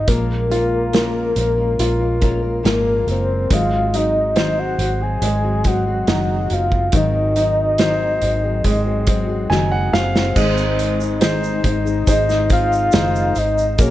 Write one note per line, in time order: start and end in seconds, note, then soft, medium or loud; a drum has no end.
0.07 1.32 A#1 medium
0.07 0.50 A#2 medium
0.07 0.50 F3 medium
0.07 0.48 G#3 medium
0.07 0.93 A#3 medium
0.07 0.49 C#4 medium
0.07 0.49 F4 medium
0.07 2.65 A#4 loud
0.07 0.50 A#4 medium
0.07 kick loud
0.07 closed hi-hat medium
0.49 0.92 G#3 medium
0.49 0.92 C#4 medium
0.49 0.93 F4 medium
0.49 1.78 F4 medium
0.49 0.93 A#4 medium
0.49 closed hi-hat medium
0.93 1.36 A#2 medium
0.93 1.36 F3 medium
0.93 1.34 G#3 medium
0.93 2.61 A#3 medium
0.93 1.35 C#4 medium
0.93 1.35 F4 medium
0.93 1.36 A#4 medium
0.93 snare medium
0.93 closed hi-hat medium
1.35 1.76 A#1 medium
1.35 1.57 G#3 medium
1.35 1.56 C#4 soft
1.35 1.56 F4 medium
1.35 1.55 A#4 medium
1.35 closed hi-hat medium
1.56 2.00 G#3 soft
1.56 1.99 C#4 soft
1.56 1.99 F4 soft
1.56 1.98 A#4 medium
1.79 2.61 A#1 medium
1.79 3.47 F4 medium
1.79 closed hi-hat medium
1.99 2.19 G#3 soft
1.99 2.20 C#4 medium
1.99 2.21 F4 medium
1.99 2.21 A#4 medium
2.20 2.42 G#3 medium
2.20 2.42 C#4 medium
2.20 2.42 F4 medium
2.20 2.41 A#4 medium
2.20 kick medium
2.20 closed hi-hat medium
2.42 2.63 G#3 soft
2.42 2.63 C#4 soft
2.42 2.63 F4 soft
2.42 2.64 A#4 soft
2.63 3.05 G#1 medium
2.63 3.07 A#2 medium
2.63 3.07 F3 medium
2.63 3.06 G#3 medium
2.63 3.48 A#3 medium
2.63 3.06 C#4 medium
2.63 3.07 F4 medium
2.63 3.08 A#4 medium
2.63 3.06 A#4 medium
2.63 snare medium
2.63 closed hi-hat medium
3.07 3.47 F#1 medium
3.07 3.50 G#3 medium
3.07 3.50 C#4 medium
3.07 3.51 F4 medium
3.07 3.51 A#4 medium
3.07 closed hi-hat medium
3.11 3.55 C5 medium
3.50 4.75 G#1 medium
3.50 3.93 G#2 medium
3.50 3.93 D#3 medium
3.50 3.91 F#3 medium
3.50 5.21 G#3 medium
3.50 3.92 C4 medium
3.50 3.93 F#4 medium
3.50 3.93 G#4 medium
3.50 3.97 F5 loud
3.50 kick loud
3.50 closed hi-hat loud
3.92 4.35 F#3 medium
3.92 4.36 C4 medium
3.92 5.61 D#4 medium
3.92 4.36 F#4 medium
3.92 4.36 G#4 medium
3.92 4.60 D#5 medium
3.92 closed hi-hat medium
4.36 4.79 G#2 medium
4.36 4.79 D#3 medium
4.36 4.77 F#3 medium
4.36 4.78 C4 medium
4.36 4.79 F#4 medium
4.36 4.79 G#4 medium
4.36 6.04 C5 medium
4.36 snare medium
4.36 closed hi-hat medium
4.59 5.04 F#5 medium
4.78 5.18 G#1 medium
4.78 5.00 F#3 soft
4.78 5.00 C4 soft
4.78 5.00 F#4 soft
4.78 4.99 G#4 soft
4.78 closed hi-hat medium
5.00 5.44 F#3 soft
5.00 5.43 C4 soft
5.00 5.43 F#4 soft
5.00 5.42 G#4 soft
5.00 5.68 G#5 medium
5.21 6.03 G#1 loud
5.21 6.89 G#3 medium
5.21 closed hi-hat medium
5.43 5.63 F#3 soft
5.43 5.64 C4 soft
5.43 5.65 F#4 soft
5.43 5.65 G#4 soft
5.64 5.86 F#3 medium
5.64 5.86 C4 medium
5.64 5.86 F#4 medium
5.64 5.85 G#4 medium
5.64 6.54 F#5 medium
5.64 kick medium
5.64 closed hi-hat medium
5.86 6.07 F#3 soft
5.86 6.07 C4 soft
5.86 6.07 F#4 soft
5.86 6.08 G#4 soft
6.07 6.47 F#1 medium
6.07 6.50 G#2 medium
6.07 6.50 D#3 medium
6.07 6.49 F#3 medium
6.07 6.50 C4 medium
6.07 7.35 D#4 medium
6.07 6.51 F#4 medium
6.07 6.51 G#4 medium
6.07 snare loud
6.07 closed hi-hat medium
6.50 6.90 F#1 medium
6.50 6.93 F#3 soft
6.50 6.93 C4 medium
6.50 6.93 F#4 medium
6.50 6.93 G#4 medium
6.50 6.94 F5 medium
6.50 closed hi-hat medium
6.72 kick medium
6.92 8.18 G#1 loud
6.92 7.36 G#2 medium
6.92 10.32 D#3 medium
6.92 7.36 D#3 medium
6.92 7.34 F#3 medium
6.92 7.35 C4 medium
6.92 7.36 F#4 medium
6.92 7.36 G#4 medium
6.92 9.48 D#5 loud
6.92 kick loud
6.92 closed hi-hat loud
7.36 7.78 F#3 medium
7.36 7.78 C4 medium
7.36 9.04 D#4 medium
7.36 7.79 F#4 medium
7.36 7.79 G#4 medium
7.36 closed hi-hat medium
7.78 8.22 G#2 medium
7.78 8.22 D#3 medium
7.78 8.20 F#3 medium
7.78 8.21 C4 medium
7.78 8.21 F#4 medium
7.78 8.22 G#4 medium
7.78 9.47 C5 medium
7.78 snare loud
7.78 closed hi-hat medium
8.21 8.62 G#1 medium
8.21 8.43 F#3 medium
8.21 8.43 C4 medium
8.21 8.42 F#4 soft
8.21 8.42 G#4 medium
8.21 closed hi-hat medium
8.43 8.86 F#3 soft
8.43 8.86 C4 soft
8.43 8.85 F#4 soft
8.43 8.84 G#4 medium
8.64 9.46 G#1 medium
8.64 10.32 G#3 medium
8.64 kick medium
8.64 closed hi-hat medium
8.85 9.05 F#3 soft
8.85 9.06 C4 medium
8.85 9.07 F#4 medium
8.85 9.07 G#4 medium
9.06 9.28 F#3 medium
9.06 9.28 C4 medium
9.06 9.28 F#4 medium
9.06 9.27 G#4 medium
9.06 kick medium
9.06 closed hi-hat medium
9.28 9.49 F#3 soft
9.28 9.50 C4 soft
9.28 9.50 F#4 medium
9.28 9.50 G#4 medium
9.50 9.90 F#1 medium
9.50 9.93 G#2 medium
9.50 9.93 D#3 medium
9.50 9.91 F#3 medium
9.50 9.92 C4 medium
9.50 10.33 D#4 soft
9.50 9.93 F#4 medium
9.50 9.94 G#4 loud
9.50 9.70 G#5 medium
9.50 snare soft
9.72 9.92 F#5 medium
9.93 10.33 F#1 medium
9.93 10.36 F#3 medium
9.93 10.35 C4 medium
9.93 10.36 F#4 medium
9.93 10.36 G#4 medium
9.93 11.61 C5 loud
9.93 10.33 F5 medium
9.93 snare medium
10.16 snare medium
10.35 11.61 G#1 medium
10.35 11.00 G#2 medium
10.35 11.00 D#3 medium
10.35 13.75 G#3 medium
10.35 11.00 G#3 medium
10.35 11.00 C4 medium
10.35 13.75 D#4 loud
10.35 10.99 D#4 medium
10.35 10.98 G#4 medium
10.35 kick loud
10.35 crash medium
10.35 shaker medium
10.57 shaker soft
10.79 closed hi-hat medium
10.99 11.20 G#3 soft
10.99 11.20 C4 soft
10.99 11.21 D#4 medium
10.99 11.21 G#4 medium
10.99 shaker soft
11.21 11.64 G#2 medium
11.21 11.64 D#3 medium
11.21 11.62 G#3 medium
11.21 11.63 C4 medium
11.21 12.04 D#4 soft
11.21 11.63 D#4 medium
11.21 12.05 G#4 soft
11.21 11.64 G#4 loud
11.21 12.05 C5 medium
11.21 snare loud
11.21 closed hi-hat medium
11.21 shaker medium
11.44 shaker medium
11.63 12.04 G#1 medium
11.63 11.85 G#3 medium
11.63 11.85 C4 medium
11.63 11.84 D#4 medium
11.63 11.84 G#4 medium
11.63 kick medium
11.63 closed hi-hat medium
11.85 12.29 G#3 soft
11.85 12.28 C4 soft
11.85 12.27 D#4 soft
11.85 12.26 G#4 soft
11.85 shaker soft
12.07 12.89 G#1 loud
12.07 12.90 D#4 soft
12.07 12.91 G#4 soft
12.07 12.91 C5 medium
12.07 12.49 D#5 loud
12.07 kick medium
12.07 closed hi-hat medium
12.07 shaker medium
12.27 12.48 G#3 soft
12.27 12.49 C4 soft
12.27 12.49 D#4 medium
12.27 12.50 G#4 medium
12.27 snare soft
12.27 shaker soft
12.49 12.92 G#3 medium
12.49 12.92 C4 medium
12.49 12.92 D#4 medium
12.49 12.92 G#4 medium
12.49 13.39 F5 medium
12.49 kick medium
12.49 closed hi-hat medium
12.73 shaker soft
12.92 13.33 F#1 medium
12.92 13.36 G#2 medium
12.92 13.36 D#3 medium
12.92 13.34 G#3 medium
12.92 13.35 C4 medium
12.92 13.76 D#4 soft
12.92 13.36 D#4 medium
12.92 13.76 G#4 soft
12.92 13.36 G#4 medium
12.92 13.76 C5 medium
12.92 snare loud
12.92 closed hi-hat medium
12.92 shaker medium
13.15 shaker soft
13.35 13.76 G#1 medium
13.35 13.78 G#3 medium
13.35 13.78 C4 medium
13.35 13.79 D#4 medium
13.35 13.79 G#4 medium
13.35 13.80 D#5 medium
13.35 closed hi-hat medium
13.35 shaker soft
13.58 shaker medium
13.78 13.90 A#1 medium
13.78 13.90 A#3 medium
13.78 13.90 C#4 medium
13.78 13.90 F#4 medium
13.78 13.90 G#4 loud
13.78 13.90 A#4 medium
13.78 13.90 C#5 loud
13.78 kick loud
13.78 closed hi-hat medium
13.78 shaker medium